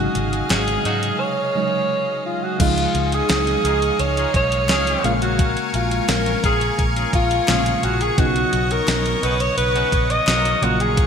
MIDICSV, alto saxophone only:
0, 0, Header, 1, 2, 480
1, 0, Start_track
1, 0, Tempo, 697674
1, 1788, Time_signature, 4, 2, 24, 8
1, 7615, End_track
2, 0, Start_track
2, 0, Title_t, "Alto saxophone"
2, 0, Program_c, 0, 65
2, 0, Note_on_c, 0, 66, 81
2, 323, Note_off_c, 0, 66, 0
2, 348, Note_on_c, 0, 68, 90
2, 825, Note_on_c, 0, 73, 106
2, 835, Note_off_c, 0, 68, 0
2, 1546, Note_off_c, 0, 73, 0
2, 1553, Note_on_c, 0, 65, 83
2, 1675, Note_on_c, 0, 66, 84
2, 1685, Note_off_c, 0, 65, 0
2, 1789, Note_off_c, 0, 66, 0
2, 1793, Note_on_c, 0, 65, 95
2, 2161, Note_on_c, 0, 68, 98
2, 2172, Note_off_c, 0, 65, 0
2, 2754, Note_on_c, 0, 73, 99
2, 2765, Note_off_c, 0, 68, 0
2, 2991, Note_off_c, 0, 73, 0
2, 2998, Note_on_c, 0, 73, 102
2, 3446, Note_off_c, 0, 73, 0
2, 3474, Note_on_c, 0, 65, 86
2, 3526, Note_off_c, 0, 65, 0
2, 3593, Note_on_c, 0, 66, 90
2, 3958, Note_on_c, 0, 65, 84
2, 3968, Note_off_c, 0, 66, 0
2, 4199, Note_on_c, 0, 70, 95
2, 4209, Note_off_c, 0, 65, 0
2, 4433, Note_off_c, 0, 70, 0
2, 4439, Note_on_c, 0, 68, 90
2, 4708, Note_off_c, 0, 68, 0
2, 4918, Note_on_c, 0, 65, 105
2, 5398, Note_on_c, 0, 66, 92
2, 5409, Note_off_c, 0, 65, 0
2, 5515, Note_on_c, 0, 68, 91
2, 5525, Note_off_c, 0, 66, 0
2, 5633, Note_on_c, 0, 66, 96
2, 5643, Note_off_c, 0, 68, 0
2, 5996, Note_on_c, 0, 70, 105
2, 6006, Note_off_c, 0, 66, 0
2, 6354, Note_on_c, 0, 71, 99
2, 6365, Note_off_c, 0, 70, 0
2, 6474, Note_on_c, 0, 73, 94
2, 6485, Note_off_c, 0, 71, 0
2, 6583, Note_off_c, 0, 73, 0
2, 6587, Note_on_c, 0, 71, 111
2, 6954, Note_on_c, 0, 75, 112
2, 6964, Note_off_c, 0, 71, 0
2, 7319, Note_on_c, 0, 66, 98
2, 7329, Note_off_c, 0, 75, 0
2, 7435, Note_on_c, 0, 68, 98
2, 7445, Note_off_c, 0, 66, 0
2, 7615, Note_off_c, 0, 68, 0
2, 7615, End_track
0, 0, End_of_file